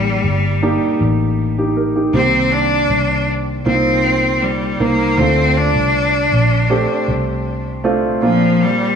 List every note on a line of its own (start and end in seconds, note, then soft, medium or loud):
0.00 0.20 A1 medium
0.00 1.00 G3 medium
0.00 0.54 A#3 medium
0.00 0.55 D4 medium
0.00 0.55 D#4 medium
0.00 0.55 G4 medium
0.23 0.77 G1 medium
0.62 1.70 A#3 medium
0.62 1.38 D4 medium
0.62 1.38 D#4 medium
0.62 1.39 G4 medium
1.00 2.10 A1 medium
1.58 1.76 D#4 soft
1.58 1.75 G4 medium
1.77 1.94 G4 soft
1.77 1.94 A#4 medium
1.95 2.32 D#4 soft
1.95 2.13 G4 medium
2.13 2.86 C2 medium
2.13 3.24 C3 soft
2.13 3.59 D#3 medium
2.13 3.58 A#3 medium
2.13 2.53 C4 medium
2.13 3.59 C4 medium
2.13 3.59 G4 medium
2.52 3.28 D4 medium
2.89 3.62 C2 medium
3.66 4.76 C2 medium
3.66 4.74 A#3 medium
3.66 4.74 C4 medium
3.66 4.43 C4 medium
3.66 4.74 D#4 medium
3.66 4.74 F4 medium
4.42 4.82 G3 medium
4.80 5.15 C2 medium
4.80 5.16 A#3 medium
4.80 5.19 A#3 medium
4.80 5.16 C4 soft
4.80 5.16 D#4 medium
4.80 5.16 A#4 medium
5.17 5.71 D2 medium
5.17 6.29 D3 soft
5.17 6.63 A3 medium
5.17 5.58 C4 medium
5.17 6.62 C4 medium
5.17 6.63 D4 medium
5.17 6.63 F4 medium
5.57 7.08 D4 medium
5.75 6.28 C2 medium
6.32 6.85 A#1 medium
6.70 7.78 A3 medium
6.70 7.78 C4 medium
6.70 7.78 D4 medium
6.70 7.78 G4 medium
7.08 8.21 C2 medium
7.84 8.20 A3 medium
7.84 8.20 C4 medium
7.84 8.20 D4 medium
7.84 8.20 F4 medium
8.21 8.93 A#1 medium
8.21 8.95 A#2 medium
8.21 8.63 F3 medium
8.21 8.95 A#3 medium
8.21 8.95 C4 medium
8.21 8.95 D4 medium
8.21 8.95 F4 medium
8.62 8.95 G3 medium